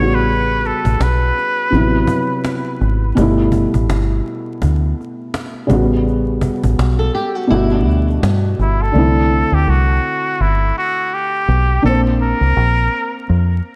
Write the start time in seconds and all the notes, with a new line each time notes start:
Already playing: A1 C#3 G3 B3 C#5
0.01 F#4
0.15 B4
0.29 cajon slap
0.64 A4, cajon slap
0.85 A1, cajon bass
1.00 B1 B4, cajon slap
1.38 cajon slap
1.71 A1 C3 F3, cajon slap
1.75 B3 E4
1.79 F#3
2.07 cajon bass
2.44 cajon slap
2.65 cajon slap
2.81 G#1, cajon slap
3.15 G1 B2 G3, cajon bass
3.19 A3 E4
3.52 cajon bass
3.74 A1, cajon bass
3.89 G1, cajon slap
4.27 cajon slap
4.62 D2, cajon bass
5.01 cajon slap
5.34 cajon slap
5.54 cajon slap
5.67 A1 C#3 G3, cajon bass, cajon slap
5.71 B3 F#4
6.08 cajon slap
6.41 cajon bass
6.64 A1, cajon bass
6.79 B1, cajon slap
6.99 A4
7.15 G4, cajon slap
7.35 F#4
7.47 G1 B2 G3 E4
7.51 A3 F#4, cajon slap
7.71 D4
7.87 D2, cajon slap
8.10 cajon slap
8.23 G2, cajon slap
8.59 G1, cajon slap
8.61 E4, cajon slap
8.82 A4
8.92 C2 D3 A3
8.96 C4 E4
9.52 D2 G4
9.68 C2 F#4
10.40 G1 E4
10.78 F#4
11.14 G4
11.48 B1
11.82 A#1 A#3 C4 D4 A4
11.88 C5
12.22 A#4
12.41 C2
12.57 A#1
13.29 F2